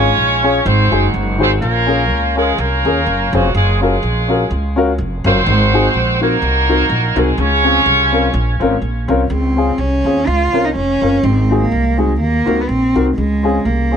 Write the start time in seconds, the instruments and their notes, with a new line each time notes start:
Already playing: upright piano G#2, horn section C#4 F4 G#4 C#5
0.17 upright bass A#1
0.43 upright piano C#4 F4 G#4 C#5
0.65 upright bass G#1, upright piano G#2, horn section C4 D#4 F#4 C5
0.91 upright bass F#1, upright piano D#4 F#4 G#4 C5
1.14 upright bass F#1
1.38 upright bass G#1, horn section C4 C5, upright piano D#4 F#4 G#4 C5
1.60 upright bass A#1, upright piano A#2, horn section A#3 C#4 F4 A#4
1.86 upright piano C#4 F4 G#4 A#4
2.10 upright bass C#2
2.36 horn section G#3 G#4, upright piano C#4 F4 G#4 A#4
2.58 upright bass C2, horn section A#3 C#4 F4 A#4
2.85 upright bass D#2, upright piano C#4 F4 G#4 A#4
3.06 upright bass F#1
3.33 upright bass F1, horn section F#3 F#4, upright piano C#4 F4 G#4 C5
3.54 upright bass F#1, horn section G#3 C#4 F4 G#4
3.81 horn section G#3 C#4 F4 G#4, upright piano C#4 F4 F#4 A#4
4.03 upright bass A#1
4.28 upright piano C#4 F4 F#4 A#4
4.51 upright bass C#2
4.76 upright piano C#4 F4 F#4 A#4
4.98 upright bass F1
5.24 upright bass F#1, horn section C4 D#4 F#4 C5, upright piano C#4 F4 F#4 A#4
5.46 upright bass G#1, upright piano G#2
5.73 upright piano C4 D#4 F#4 G#4
5.94 upright bass A#1
6.20 horn section A#3 D#4 F#4 A#4, upright piano C4 D#4 F#4 A#4
6.42 upright bass C2
6.68 upright piano C4 D#4 F#4 A#4
6.90 upright bass A#1
7.15 upright bass C2, horn section G#3 G#4, upright piano C4 D#4 F#4 A#4
7.38 upright bass C#2, upright piano C#3, horn section C#4 F4 G#4 C#5
7.63 upright piano C4 C#4 F4 G#4
7.86 upright bass C2
8.12 upright piano C4 C#4 F4 A#4
8.34 upright bass A#1
8.60 upright bass G#1, upright piano C4 C#4 F4 A#4
8.82 upright bass A#1
9.08 upright bass C2, upright piano C4 C#4 F4 A#4
9.30 upright bass C#2, upright piano C#3, cello C4
9.56 upright piano C4 C#4 F4 G#4
9.78 upright bass C2, cello C#4
10.04 upright bass D#2, upright piano C4 C#4 F4 G#4
10.27 upright bass C#2, cello F4
10.52 upright bass C2, upright piano C4 C#4 F4 A#4
10.65 cello D#4
10.75 upright bass F1, cello C#4
11.01 upright bass F#1, upright piano C4 C#4 F4 A#4
11.23 upright bass G#1, upright piano G#2, cello C4
11.50 upright piano C4 D#4 F#4 G#4
11.60 cello A#3
11.72 upright bass C2
11.97 cello G#3, upright piano C4 D#4 F#4 G#4
12.20 upright bass D#2, cello A#3
12.46 upright bass C#2, upright piano C4 D#4 F#4 A#4
12.61 cello B3
12.67 upright bass A#1, cello C4
12.94 upright bass C2, upright piano C4 D#4 F#4 A#4
13.16 upright bass C#2, upright piano C#3, cello G#3
13.43 upright piano C4 C#4 F4 G#4
13.64 upright bass C2, cello A#3
13.91 upright piano C4 C#4 F4 G#4